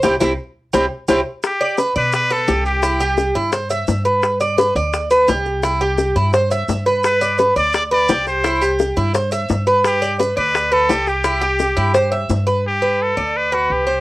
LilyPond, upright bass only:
\new Staff \with { instrumentName = "Upright bass" } { \clef bass \time 4/4 \key g \major \tempo 4 = 171 c,8 c,8 r4 c,8 r8 c,8 r8 | r4. b,4. c,4~ | c,4. g,4. g,4~ | g,4. d,4. c,4~ |
c,4. g,4. g,4~ | g,4. d,4. c,4~ | c,4. g,4. g,4~ | g,4. d,4. c,4~ |
c,4. g,4. g,4~ | g,4. d,4. c,4 | }